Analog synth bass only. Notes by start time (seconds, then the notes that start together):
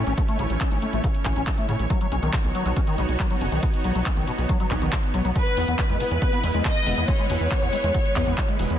0.07 A1
0.39 A1
0.50 A1
0.72 A1
0.93 A1
1.25 A1
1.36 A1
1.69 A2
1.79 A1
2.12 B1
2.22 B1
2.44 B1
2.66 B1
2.98 B1
3.09 B1
3.41 F#1
3.52 B1
3.84 B1
3.95 B1
4.17 B1
4.38 B1
4.71 B1
4.82 B1
5.14 B1
5.25 B1
5.57 E2
5.68 E2
5.90 E2
6.11 E2
6.44 E2
6.54 E2
6.87 E1
6.97 E2
7.30 E2
7.41 E2
7.62 E2
7.84 E2
8.16 E2
8.27 E2
8.60 E1
8.70 E2